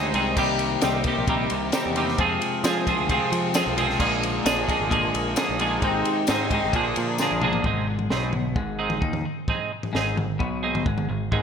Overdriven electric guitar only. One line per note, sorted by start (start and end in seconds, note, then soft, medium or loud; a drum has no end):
0.00 0.12 G#2 medium
0.00 0.12 D#3 medium
0.00 0.13 G#3 medium
0.00 0.14 C4 medium
0.00 0.14 D#4 medium
0.00 0.14 G#4 medium
0.13 0.35 G#2 medium
0.13 0.35 D#3 medium
0.13 0.36 G#3 medium
0.13 0.37 C4 medium
0.13 0.36 D#4 medium
0.13 0.36 G#4 loud
0.36 0.81 C3 medium
0.36 0.82 G3 medium
0.36 0.83 C4 loud
0.36 0.83 D#4 loud
0.36 0.83 G4 loud
0.82 1.05 C3 medium
0.82 1.05 G3 loud
0.82 1.07 C4 loud
0.82 1.06 D#4 loud
0.82 1.07 G4 medium
1.06 1.27 C3 medium
1.06 1.27 G3 medium
1.06 1.27 C4 medium
1.06 1.28 D#4 medium
1.06 1.29 G4 medium
1.28 1.71 C3 medium
1.28 1.72 G3 medium
1.28 1.73 C4 loud
1.28 1.73 D#4 loud
1.28 1.74 G4 loud
1.73 1.94 C3 medium
1.73 1.95 G3 medium
1.73 1.96 C4 medium
1.73 1.96 D#4 medium
1.73 1.96 G4 medium
1.95 2.17 C3 medium
1.95 2.17 G3 medium
1.95 2.18 C4 medium
1.95 2.18 D#4 medium
1.95 2.18 G4 loud
2.19 2.63 F3 loud
2.19 2.64 C4 loud
2.19 2.65 F4 loud
2.19 2.66 G#4 loud
2.64 2.86 F3 medium
2.64 2.86 C4 loud
2.64 2.87 F4 loud
2.64 2.88 G#4 loud
2.86 3.08 F3 medium
2.86 3.09 C4 medium
2.86 3.09 F4 medium
2.86 3.11 G#4 medium
3.09 3.53 F3 medium
3.09 3.53 C4 medium
3.09 3.54 F4 loud
3.09 3.55 G#4 medium
3.54 3.75 F3 medium
3.54 3.76 C4 medium
3.54 3.77 F4 medium
3.54 3.78 G#4 loud
3.77 3.98 F3 medium
3.77 3.99 C4 loud
3.77 3.99 F4 loud
3.77 4.01 G#4 loud
3.99 4.43 A#2 loud
3.99 4.44 D3 loud
3.99 4.44 F3 loud
3.99 4.44 A#3 loud
3.99 4.46 G#4 loud
4.44 4.67 A#2 medium
4.44 4.67 D3 loud
4.44 4.68 F3 medium
4.44 4.68 A#3 medium
4.44 4.69 D4 loud
4.44 4.70 G#4 loud
4.68 4.90 A#2 medium
4.68 4.90 D3 medium
4.68 4.90 F3 medium
4.68 4.91 A#3 medium
4.68 4.94 D4 medium
4.68 4.93 G#4 medium
4.91 5.34 A#2 medium
4.91 5.35 D3 medium
4.91 5.36 F3 loud
4.91 5.36 A#3 loud
4.91 5.38 G#4 medium
5.36 5.58 A#2 medium
5.36 5.58 D3 medium
5.36 5.59 F3 medium
5.36 5.60 A#3 medium
5.36 5.60 D4 medium
5.36 5.61 G#4 loud
5.59 5.81 A#2 medium
5.59 5.81 D3 medium
5.59 5.81 F3 loud
5.59 5.82 A#3 loud
5.59 5.82 D4 loud
5.59 6.30 G#4 loud
5.82 6.27 G#2 medium
5.82 6.27 D#3 medium
5.82 6.28 G#3 loud
5.82 6.29 C4 loud
5.82 6.29 D#4 loud
6.28 6.50 G#2 medium
6.28 6.51 D#3 medium
6.28 6.51 G#3 medium
6.28 6.52 C4 medium
6.28 6.53 D#4 loud
6.28 6.53 G#4 medium
6.52 6.73 G#2 medium
6.52 6.73 D#3 medium
6.52 6.73 G#3 medium
6.52 6.73 C4 medium
6.52 6.74 D#4 medium
6.52 6.74 G#4 medium
6.74 7.18 A#2 medium
6.74 7.19 D3 medium
6.74 7.19 F3 loud
6.74 7.20 A#3 loud
6.74 7.20 D4 loud
6.74 7.21 G#4 loud
7.19 7.41 A#2 medium
7.19 7.41 D3 medium
7.19 7.42 F3 medium
7.19 7.42 A#3 medium
7.19 7.42 D4 medium
7.19 7.43 G#4 medium
7.42 7.63 A#2 medium
7.42 7.64 D3 medium
7.42 7.64 F3 medium
7.42 7.64 A#3 medium
7.42 7.64 D4 medium
7.42 7.64 G#4 loud
7.65 7.87 G#3 medium
7.65 7.86 C4 medium
7.65 7.87 D#4 medium
7.65 7.86 G#4 medium
7.88 muted overdriven electric guitar stroke soft
8.10 8.33 G#3 medium
8.10 8.33 C4 medium
8.10 8.33 D#4 medium
8.10 8.33 G#4 medium
8.34 muted overdriven electric guitar stroke soft
8.56 muted overdriven electric guitar stroke soft
8.79 9.01 G#3 medium
8.79 9.01 C4 medium
8.79 9.02 D#4 medium
8.79 9.02 G#4 medium
9.03 muted overdriven electric guitar stroke soft
9.25 muted overdriven electric guitar stroke soft
9.49 9.71 G#3 medium
9.49 9.71 C4 medium
9.49 9.72 D#4 medium
9.49 9.71 G#4 medium
9.72 muted overdriven electric guitar stroke soft
9.95 10.18 G#3 medium
9.95 10.17 C4 medium
9.95 10.17 D#4 medium
9.95 10.17 G#4 medium
10.18 muted overdriven electric guitar stroke soft
10.40 muted overdriven electric guitar stroke soft
10.63 10.85 G#3 medium
10.63 10.86 C4 medium
10.63 10.86 D#4 medium
10.63 10.86 G#4 medium
10.87 muted overdriven electric guitar stroke soft
11.09 muted overdriven electric guitar stroke medium
11.32 11.42 G#3 medium
11.32 11.42 C4 medium
11.32 11.42 D#4 medium
11.32 11.42 G#4 medium